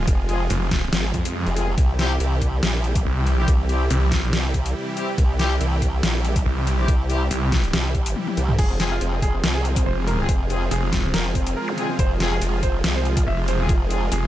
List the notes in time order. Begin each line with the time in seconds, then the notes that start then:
Already playing: C3 F3 G#3 F4 G#4
0.08 F1, kick, closed hi-hat
0.29 C4 F4 G#4, closed hi-hat
0.50 F1, closed hi-hat
0.71 kick, snare, closed hi-hat
0.93 G#1, snare, closed hi-hat
1.14 F2, kick, closed hi-hat
1.25 closed hi-hat
1.47 F1, closed hi-hat
1.56 C4 F4 G#4, closed hi-hat
1.78 C2 E3 G3 E4 G4, kick, closed hi-hat
1.99 C4 E4 G4, snare, closed hi-hat
2.20 C2, closed hi-hat
2.42 kick, closed hi-hat
2.63 A#1, snare, closed hi-hat
2.84 closed hi-hat
2.95 kick, closed hi-hat
3.05 C2
3.27 closed hi-hat
3.38 C4 E4 G4
3.48 C2, kick, closed hi-hat
3.69 C4 E4 G4, closed hi-hat
3.90 C2, closed hi-hat
4.12 kick, snare, closed hi-hat
4.33 C2, snare, closed hi-hat
4.54 kick, closed hi-hat
4.66 closed hi-hat
4.97 C4 E4 G4, closed hi-hat
5.18 C2, kick, closed hi-hat
5.39 C4 E4 G4, snare, closed hi-hat
5.61 C2, closed hi-hat
5.82 kick, closed hi-hat
6.03 A#1, snare, closed hi-hat
6.25 closed hi-hat
6.36 kick, closed hi-hat
6.46 C2
6.67 closed hi-hat
6.78 C4 E4 G4
6.88 C2, kick, closed hi-hat
7.10 C4 E4 G4, closed hi-hat
7.31 C2, closed hi-hat
7.52 kick, snare, closed hi-hat
7.64 closed hi-hat
7.73 C2, snare, closed hi-hat
7.95 kick, closed hi-hat
8.06 closed hi-hat
8.16 high tom
8.27 high tom
8.37 C2, closed hi-hat
8.49 mid tom
8.59 F1 C3 F3 G#3 F4 G#4, kick, closed hi-hat, crash
8.70 C4
8.80 C4 F4 G#4, snare, closed hi-hat
8.91 F4
9.01 F1 C4, closed hi-hat
9.12 C4
9.22 G#4, kick, closed hi-hat
9.34 C4
9.44 C2 C4, snare, closed hi-hat
9.55 G#4
9.65 C4, closed hi-hat
9.76 C4, kick, closed hi-hat
9.86 F1 C5
9.98 C4
10.07 A#4, closed hi-hat
10.19 C4 F4 G#4
10.29 F1 C4, kick, closed hi-hat
10.50 C4 F4 G#4, closed hi-hat
10.62 C4
10.71 F1 G#4, closed hi-hat
10.83 C4
10.93 C4, kick, snare, closed hi-hat
11.04 C4
11.14 F1 A#4, snare, closed hi-hat
11.25 C4
11.35 C4, kick, closed hi-hat
11.47 C4, closed hi-hat
11.56 A#4
11.68 C4, zap
11.78 C4 F4 G#4, closed hi-hat
11.89 C4
11.99 F1 C5, kick, closed hi-hat
12.11 F4
12.20 C4 F4 G#4, snare, closed hi-hat
12.32 G#4
12.42 F1 F4, closed hi-hat
12.53 F4
12.63 C5, kick, closed hi-hat
12.74 F4
12.84 C2 F4, snare, closed hi-hat
12.96 C5
13.05 F4, closed hi-hat
13.17 F4, kick, closed hi-hat
13.27 F1 E5
13.38 F4
13.48 C5, closed hi-hat
13.59 C4 F4 G#4
13.69 F1 F4, kick, closed hi-hat
13.90 C4 F4 G#4, closed hi-hat
14.02 F4
14.12 F1 G#4, closed hi-hat
14.23 F4